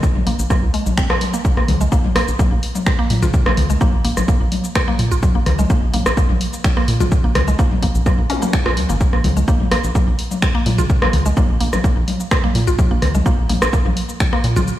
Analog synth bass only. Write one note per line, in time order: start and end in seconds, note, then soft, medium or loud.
0.15 0.22 A#1 medium
0.27 0.34 A#1 medium
0.39 0.46 A#1 medium
0.63 0.70 C#2 loud
0.86 0.93 A#1 loud
1.57 1.64 A#1 loud
1.68 1.76 C#2 medium
1.81 1.88 C2 medium
2.04 2.11 A#1 medium
2.16 2.23 A#1 medium
2.28 2.35 A#1 medium
2.52 2.58 A#1 loud
3.10 3.24 A#2 medium
3.23 3.29 A#1 loud
3.46 3.53 A#1 loud
3.57 3.65 C#2 medium
3.70 3.77 C2 medium
3.93 4.00 A#1 medium
4.05 4.12 A#1 medium
4.17 4.24 A#1 medium
4.41 4.47 A#1 loud
4.99 5.13 A#2 loud
5.12 5.18 A#1 loud
5.35 5.42 A#1 loud
5.46 5.54 C#2 medium
5.59 5.66 C2 medium
5.82 5.89 A#1 medium
5.94 6.01 A#1 medium
6.06 6.13 A#1 medium
6.30 6.36 A#1 loud
6.88 7.02 A#2 loud
7.01 7.07 A#1 loud
7.24 7.31 A#1 loud
7.35 7.43 C#2 medium
7.48 7.55 C2 medium
7.71 7.78 A#1 medium
7.83 7.90 A#1 medium
7.95 8.02 A#1 medium
8.19 8.25 A#1 loud
8.66 8.79 A#1 medium
8.77 8.85 C#2 medium
8.89 8.96 G#1 medium
9.13 9.20 A#1 loud
9.24 9.32 C#2 medium
9.37 9.44 C2 medium
9.60 9.67 A#1 medium
9.72 9.79 A#1 medium
9.84 9.91 A#1 medium
10.08 10.14 A#1 loud
10.66 10.80 A#2 medium
10.78 10.85 A#1 loud
11.02 11.09 A#1 loud
11.13 11.21 C#2 medium
11.26 11.33 C2 medium
11.49 11.56 A#1 medium
11.61 11.68 A#1 medium
11.73 11.80 A#1 medium
11.97 12.03 A#1 loud
12.55 12.69 A#2 medium
12.67 12.74 A#1 loud
12.91 12.98 A#1 loud
13.02 13.10 C#2 medium
13.15 13.21 C2 medium
13.38 13.45 A#1 medium
13.49 13.57 A#1 medium
13.62 13.69 A#1 medium
13.86 13.92 A#1 loud
14.44 14.58 A#2 loud
14.56 14.63 A#1 loud